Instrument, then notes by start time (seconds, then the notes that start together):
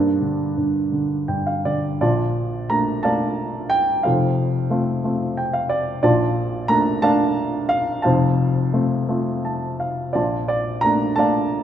grand piano
Already playing: G2 A#3 D4
0.21 D3
0.57 G2
0.92 D3
1.28 G2 G5
1.47 F5
1.65 D3 D5
2.01 A#1 A#2 F4 D5 A5
2.70 A3 A#3 D4 A#5
3.03 A3 A#3 D4 D5 F5 A5
3.70 G5
4.03 F1 F2 A4 C5 F5
4.70 A3 C4 F4
5.04 A3 C4 F4
5.37 G5
5.53 F5
5.69 D5
6.03 A#1 A#2 F4 D5 A5
6.68 A3 A#3 D4 A#5
7.02 A3 A#3 D4 D5 F5 A5
7.69 F5
8.02 F1 F2 C5 F5 A5
8.73 A3 C4 F4
9.09 A3 C4 F4
9.45 A5
9.80 F5
10.13 A#1 A#2 F4 D5 A5
10.48 D5
10.81 A3 A#3 D4 A#5
11.16 A3 A#3 D4 D5 F5 A5